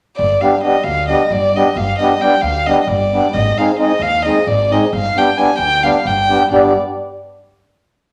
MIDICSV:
0, 0, Header, 1, 4, 480
1, 0, Start_track
1, 0, Tempo, 452148
1, 194, Time_signature, 7, 3, 24, 8
1, 8628, End_track
2, 0, Start_track
2, 0, Title_t, "Violin"
2, 0, Program_c, 0, 40
2, 181, Note_on_c, 0, 74, 81
2, 438, Note_on_c, 0, 77, 68
2, 454, Note_off_c, 0, 74, 0
2, 666, Note_off_c, 0, 77, 0
2, 677, Note_on_c, 0, 75, 72
2, 892, Note_on_c, 0, 77, 87
2, 908, Note_off_c, 0, 75, 0
2, 1147, Note_off_c, 0, 77, 0
2, 1154, Note_on_c, 0, 75, 69
2, 1397, Note_on_c, 0, 74, 81
2, 1413, Note_off_c, 0, 75, 0
2, 1658, Note_on_c, 0, 75, 75
2, 1674, Note_off_c, 0, 74, 0
2, 1878, Note_on_c, 0, 77, 87
2, 1894, Note_off_c, 0, 75, 0
2, 2101, Note_off_c, 0, 77, 0
2, 2107, Note_on_c, 0, 75, 72
2, 2346, Note_on_c, 0, 79, 71
2, 2362, Note_off_c, 0, 75, 0
2, 2560, Note_on_c, 0, 77, 81
2, 2576, Note_off_c, 0, 79, 0
2, 2828, Note_on_c, 0, 75, 78
2, 2844, Note_off_c, 0, 77, 0
2, 2979, Note_off_c, 0, 75, 0
2, 2985, Note_on_c, 0, 75, 55
2, 3061, Note_on_c, 0, 74, 85
2, 3077, Note_off_c, 0, 75, 0
2, 3540, Note_on_c, 0, 75, 80
2, 3556, Note_off_c, 0, 74, 0
2, 3801, Note_on_c, 0, 77, 70
2, 3817, Note_off_c, 0, 75, 0
2, 4022, Note_off_c, 0, 77, 0
2, 4028, Note_on_c, 0, 75, 76
2, 4269, Note_on_c, 0, 77, 97
2, 4285, Note_off_c, 0, 75, 0
2, 4505, Note_off_c, 0, 77, 0
2, 4511, Note_on_c, 0, 75, 76
2, 4755, Note_on_c, 0, 74, 86
2, 4771, Note_off_c, 0, 75, 0
2, 5010, Note_on_c, 0, 75, 75
2, 5026, Note_off_c, 0, 74, 0
2, 5237, Note_off_c, 0, 75, 0
2, 5261, Note_on_c, 0, 77, 91
2, 5497, Note_on_c, 0, 79, 77
2, 5513, Note_off_c, 0, 77, 0
2, 5708, Note_on_c, 0, 80, 76
2, 5724, Note_off_c, 0, 79, 0
2, 5924, Note_off_c, 0, 80, 0
2, 5930, Note_on_c, 0, 79, 96
2, 6192, Note_on_c, 0, 77, 81
2, 6208, Note_off_c, 0, 79, 0
2, 6441, Note_on_c, 0, 79, 85
2, 6457, Note_off_c, 0, 77, 0
2, 6909, Note_off_c, 0, 79, 0
2, 6916, Note_on_c, 0, 74, 73
2, 7145, Note_off_c, 0, 74, 0
2, 8628, End_track
3, 0, Start_track
3, 0, Title_t, "Accordion"
3, 0, Program_c, 1, 21
3, 433, Note_on_c, 1, 55, 62
3, 439, Note_on_c, 1, 59, 53
3, 448, Note_on_c, 1, 67, 64
3, 451, Note_on_c, 1, 62, 60
3, 574, Note_off_c, 1, 55, 0
3, 577, Note_off_c, 1, 59, 0
3, 582, Note_off_c, 1, 67, 0
3, 583, Note_off_c, 1, 62, 0
3, 664, Note_on_c, 1, 55, 52
3, 669, Note_on_c, 1, 59, 52
3, 677, Note_on_c, 1, 62, 55
3, 688, Note_on_c, 1, 67, 62
3, 802, Note_off_c, 1, 55, 0
3, 805, Note_off_c, 1, 59, 0
3, 809, Note_off_c, 1, 62, 0
3, 814, Note_off_c, 1, 67, 0
3, 1143, Note_on_c, 1, 55, 55
3, 1154, Note_on_c, 1, 59, 46
3, 1156, Note_on_c, 1, 62, 51
3, 1164, Note_on_c, 1, 67, 60
3, 1289, Note_off_c, 1, 55, 0
3, 1294, Note_off_c, 1, 59, 0
3, 1295, Note_off_c, 1, 62, 0
3, 1299, Note_off_c, 1, 67, 0
3, 1643, Note_on_c, 1, 55, 54
3, 1654, Note_on_c, 1, 59, 48
3, 1656, Note_on_c, 1, 62, 44
3, 1662, Note_on_c, 1, 67, 62
3, 1784, Note_off_c, 1, 55, 0
3, 1790, Note_off_c, 1, 59, 0
3, 1791, Note_off_c, 1, 62, 0
3, 1793, Note_off_c, 1, 67, 0
3, 2119, Note_on_c, 1, 55, 55
3, 2127, Note_on_c, 1, 59, 48
3, 2131, Note_on_c, 1, 62, 56
3, 2137, Note_on_c, 1, 67, 64
3, 2258, Note_off_c, 1, 55, 0
3, 2262, Note_off_c, 1, 59, 0
3, 2264, Note_off_c, 1, 62, 0
3, 2267, Note_off_c, 1, 67, 0
3, 2346, Note_on_c, 1, 55, 56
3, 2352, Note_on_c, 1, 59, 50
3, 2362, Note_on_c, 1, 62, 49
3, 2363, Note_on_c, 1, 67, 64
3, 2484, Note_off_c, 1, 55, 0
3, 2487, Note_off_c, 1, 59, 0
3, 2492, Note_off_c, 1, 62, 0
3, 2492, Note_off_c, 1, 67, 0
3, 2828, Note_on_c, 1, 55, 53
3, 2835, Note_on_c, 1, 59, 51
3, 2839, Note_on_c, 1, 62, 48
3, 2851, Note_on_c, 1, 67, 59
3, 2971, Note_off_c, 1, 55, 0
3, 2974, Note_off_c, 1, 59, 0
3, 2977, Note_off_c, 1, 62, 0
3, 2982, Note_off_c, 1, 67, 0
3, 3316, Note_on_c, 1, 55, 56
3, 3325, Note_on_c, 1, 59, 47
3, 3338, Note_on_c, 1, 62, 53
3, 3342, Note_on_c, 1, 67, 61
3, 3460, Note_off_c, 1, 55, 0
3, 3465, Note_off_c, 1, 59, 0
3, 3471, Note_off_c, 1, 62, 0
3, 3473, Note_off_c, 1, 67, 0
3, 3796, Note_on_c, 1, 56, 58
3, 3808, Note_on_c, 1, 60, 55
3, 3811, Note_on_c, 1, 63, 60
3, 3819, Note_on_c, 1, 68, 71
3, 3936, Note_off_c, 1, 56, 0
3, 3942, Note_off_c, 1, 60, 0
3, 3943, Note_off_c, 1, 63, 0
3, 3947, Note_off_c, 1, 68, 0
3, 4005, Note_on_c, 1, 56, 58
3, 4019, Note_on_c, 1, 60, 54
3, 4021, Note_on_c, 1, 63, 51
3, 4031, Note_on_c, 1, 68, 64
3, 4153, Note_off_c, 1, 56, 0
3, 4160, Note_off_c, 1, 60, 0
3, 4161, Note_off_c, 1, 63, 0
3, 4166, Note_off_c, 1, 68, 0
3, 4511, Note_on_c, 1, 56, 54
3, 4519, Note_on_c, 1, 63, 54
3, 4521, Note_on_c, 1, 60, 49
3, 4529, Note_on_c, 1, 68, 55
3, 4652, Note_off_c, 1, 56, 0
3, 4655, Note_off_c, 1, 63, 0
3, 4657, Note_off_c, 1, 60, 0
3, 4661, Note_off_c, 1, 68, 0
3, 5001, Note_on_c, 1, 56, 55
3, 5001, Note_on_c, 1, 60, 47
3, 5011, Note_on_c, 1, 63, 46
3, 5014, Note_on_c, 1, 68, 63
3, 5142, Note_off_c, 1, 56, 0
3, 5142, Note_off_c, 1, 60, 0
3, 5147, Note_off_c, 1, 63, 0
3, 5149, Note_off_c, 1, 68, 0
3, 5478, Note_on_c, 1, 55, 55
3, 5483, Note_on_c, 1, 59, 55
3, 5487, Note_on_c, 1, 62, 59
3, 5502, Note_on_c, 1, 67, 64
3, 5616, Note_off_c, 1, 55, 0
3, 5618, Note_off_c, 1, 59, 0
3, 5620, Note_off_c, 1, 62, 0
3, 5628, Note_off_c, 1, 67, 0
3, 5697, Note_on_c, 1, 55, 56
3, 5697, Note_on_c, 1, 59, 53
3, 5706, Note_on_c, 1, 62, 47
3, 5712, Note_on_c, 1, 67, 62
3, 5838, Note_off_c, 1, 55, 0
3, 5838, Note_off_c, 1, 59, 0
3, 5842, Note_off_c, 1, 62, 0
3, 5845, Note_off_c, 1, 67, 0
3, 6183, Note_on_c, 1, 55, 58
3, 6198, Note_on_c, 1, 59, 54
3, 6199, Note_on_c, 1, 62, 49
3, 6206, Note_on_c, 1, 67, 66
3, 6327, Note_off_c, 1, 55, 0
3, 6334, Note_off_c, 1, 59, 0
3, 6335, Note_off_c, 1, 62, 0
3, 6338, Note_off_c, 1, 67, 0
3, 6669, Note_on_c, 1, 55, 58
3, 6676, Note_on_c, 1, 59, 49
3, 6686, Note_on_c, 1, 62, 46
3, 6689, Note_on_c, 1, 67, 60
3, 6815, Note_off_c, 1, 55, 0
3, 6819, Note_off_c, 1, 59, 0
3, 6824, Note_off_c, 1, 62, 0
3, 6825, Note_off_c, 1, 67, 0
3, 6907, Note_on_c, 1, 62, 60
3, 6910, Note_on_c, 1, 59, 60
3, 6915, Note_on_c, 1, 55, 70
3, 6915, Note_on_c, 1, 67, 79
3, 7140, Note_off_c, 1, 62, 0
3, 7142, Note_off_c, 1, 59, 0
3, 7144, Note_off_c, 1, 55, 0
3, 7144, Note_off_c, 1, 67, 0
3, 8628, End_track
4, 0, Start_track
4, 0, Title_t, "Upright bass"
4, 0, Program_c, 2, 32
4, 200, Note_on_c, 2, 31, 69
4, 347, Note_off_c, 2, 31, 0
4, 892, Note_on_c, 2, 38, 69
4, 1187, Note_off_c, 2, 38, 0
4, 1384, Note_on_c, 2, 31, 73
4, 1679, Note_off_c, 2, 31, 0
4, 1868, Note_on_c, 2, 31, 74
4, 2019, Note_off_c, 2, 31, 0
4, 2572, Note_on_c, 2, 38, 80
4, 2868, Note_off_c, 2, 38, 0
4, 3050, Note_on_c, 2, 31, 82
4, 3349, Note_off_c, 2, 31, 0
4, 3549, Note_on_c, 2, 32, 79
4, 3699, Note_off_c, 2, 32, 0
4, 4239, Note_on_c, 2, 39, 75
4, 4538, Note_off_c, 2, 39, 0
4, 4743, Note_on_c, 2, 32, 77
4, 5038, Note_off_c, 2, 32, 0
4, 5230, Note_on_c, 2, 31, 71
4, 5380, Note_off_c, 2, 31, 0
4, 5928, Note_on_c, 2, 38, 71
4, 6223, Note_off_c, 2, 38, 0
4, 6424, Note_on_c, 2, 31, 69
4, 6718, Note_off_c, 2, 31, 0
4, 6910, Note_on_c, 2, 31, 64
4, 7141, Note_off_c, 2, 31, 0
4, 8628, End_track
0, 0, End_of_file